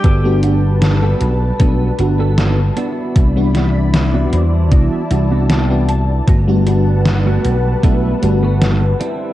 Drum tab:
HH |xxxxxxxx|xxxxxxxx|xxxxxxxx|
SD |--o---o-|-oo---o-|--o---o-|
BD |o---o---|o---o---|o---o---|